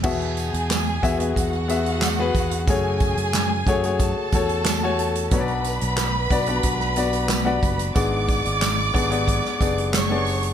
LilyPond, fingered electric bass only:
\new Staff \with { instrumentName = "Fingered electric bass" } { \clef bass \time 4/4 \key e \mixolydian \tempo 4 = 91 r8. e,8. e,8 e,4. e,8 | fis,8. fis,8. fis,8. r16 e,4. | b,,8. b,,8. b,,8 b,,4. fis,,8 | gis,,8. gis,,8. gis,,8. r16 fis,,4. | }